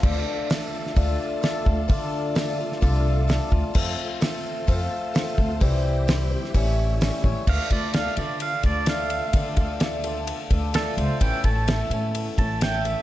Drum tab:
CC |x---------------|----------------|x---------------|----------------|
RD |----------------|----------------|----------------|----------------|
HH |----o---o---o---|o---o---o---o---|----o---o---o---|o---o---o---o---|
SD |----o--o----o---|----o--o----o---|----o-------o---|----o--o----o---|
BD |o-------o-----o-|o-------o-----o-|o-------o-----o-|o-------o-----o-|

CC |x---------------|----------------|----------------|
RD |--x-x-x-x-x-x-x-|x-x-x-x-x-x-x-x-|x-x-x-x-x-x-x-x-|
HH |----------------|----------------|----------------|
SD |----oo------o---|----o-------o---|----o-------o---|
BD |o-o-------o-----|o-o-------o-----|o-o-------o-----|